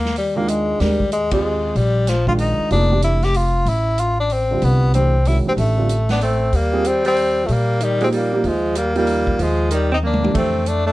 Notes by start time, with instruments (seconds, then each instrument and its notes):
Already playing: upright bass D#2, tenor saxophone A#3
0.05 snare
0.16 tenor saxophone G3, open hi-hat
0.36 upright piano D#3 G#3 D4 F4, tenor saxophone A#3
0.48 tenor saxophone G#3, closed hi-hat
0.79 upright bass D#2, tenor saxophone G3, upright piano G#3 D4 G4 A#4, snare, open hi-hat
1.00 kick
1.12 tenor saxophone G#3, closed hi-hat
1.31 tenor saxophone G#3, upright piano C4 F4 G4 G#4, kick, ride
1.75 upright bass A#1, tenor saxophone G3, open hi-hat
2.07 tenor saxophone F3, snare, closed hi-hat
2.27 upright piano D#3 G#3 D4 F4, tenor saxophone F4, kick
2.39 tenor saxophone D#4, open hi-hat
2.59 muted upright bass stroke
2.70 upright bass F1, upright piano F3 A#3 D#4 G#4, tenor saxophone D4, open hi-hat
2.91 upright piano E3 A3 D4 G4
3.02 tenor saxophone E4, closed hi-hat
3.23 tenor saxophone G4, snare, open hi-hat
3.34 tenor saxophone F4, open hi-hat
3.65 upright bass A1, tenor saxophone E4, open hi-hat
3.98 tenor saxophone F4, closed hi-hat
4.20 tenor saxophone D4
4.30 tenor saxophone C4, open hi-hat
4.51 upright piano D3 G3 C4 F4
4.62 upright bass C2, tenor saxophone B3, open hi-hat
4.94 upright piano E3 A3 D4 G4, tenor saxophone C4, closed hi-hat
5.25 upright piano D#3 G#3 C#4 F#4, tenor saxophone E4, open hi-hat
5.46 upright piano E3 A3 D4 G4, tenor saxophone C4
5.57 upright bass A1, tenor saxophone A3, open hi-hat
5.77 upright piano D3 G3 C4 F4
5.89 closed hi-hat
6.09 alto saxophone B3, tenor saxophone D4, snare, open hi-hat
6.21 alto saxophone A3, tenor saxophone C4, open hi-hat
6.52 upright bass D#2, alto saxophone G3, tenor saxophone A#3, open hi-hat
6.73 upright piano G3 C4 F4 G#4
6.84 alto saxophone G3, tenor saxophone C4, closed hi-hat
7.05 alto saxophone G3, tenor saxophone C4, open hi-hat
7.16 open hi-hat
7.45 alto saxophone F3, tenor saxophone A3, open hi-hat
7.49 upright bass A#2, alto saxophone G3, tenor saxophone A#3
7.80 alto saxophone D#3, tenor saxophone G3, closed hi-hat
8.01 upright piano F3 A#3 D#4 G4, alto saxophone G#3, tenor saxophone C4, open hi-hat
8.12 alto saxophone G3, tenor saxophone A#3, open hi-hat
8.33 upright piano F3 A#3 D#4 G4
8.44 upright bass D#2, alto saxophone F3, tenor saxophone G#3, open hi-hat
8.75 alto saxophone G3, tenor saxophone A#3, closed hi-hat
8.95 upright piano F3 A#3 D#4 G4, alto saxophone G3, tenor saxophone A#3, open hi-hat
9.07 open hi-hat
9.27 kick
9.39 upright bass D#2, alto saxophone F3, tenor saxophone G#3, open hi-hat
9.71 alto saxophone D#3, tenor saxophone G3, closed hi-hat
9.92 alto saxophone C4, tenor saxophone D#4
10.03 alto saxophone A#3, tenor saxophone D4, high tom
10.14 mid tom
10.22 upright piano E3 A3 D4 G4, mid tom
10.34 upright bass F2, alto saxophone A3, tenor saxophone C4, kick, ride
10.66 alto saxophone A3, tenor saxophone D4, closed hi-hat
10.86 alto saxophone A3, tenor saxophone D4